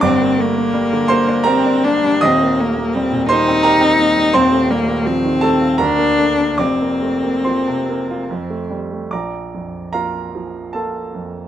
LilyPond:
<<
  \new Staff \with { instrumentName = "Cello" } { \time 3/4 \key bes \major \tempo 4 = 77 c'8 bes4. c'8 d'8 | c'8 bes8 c'8 ees'4. | c'8 bes8 c'4 d'4 | c'2~ c'8 r8 |
r2. | }
  \new Staff \with { instrumentName = "Grand piano" } { \time 3/4 \key bes \major <d'' d'''>4. <c'' c'''>8 <bes' bes''>4 | <ees'' ees'''>4. <c'' c'''>8 <bes' bes''>4 | <c'' c'''>4. <a' a''>8 <bes' bes''>4 | <d'' d'''>4 <c'' c'''>4. r8 |
<d'' bes'' d'''>4 <bes' f'' bes''>4 <a' a''>4 | }
  \new Staff \with { instrumentName = "Grand piano" } { \time 3/4 \key bes \major <g,, g,>16 bes16 a16 bes16 g16 d16 bes16 d'16 g'16 d'16 bes16 g16 | <ees,, ees,>16 bes16 a16 bes16 g16 bes,16 bes16 c'16 g'16 c'16 bes16 g16 | <ees,, ees,>16 a16 g16 a16 f16 ees16 a16 f'16 d,16 bes16 a16 bes16 | <f,, f,>16 bes16 a16 bes16 f16 c16 bes16 f'16 f,16 a16 g16 a16 |
bes,,8 f,8 <bes f'>8 f8 <bes f'>8 f,8 | }
>>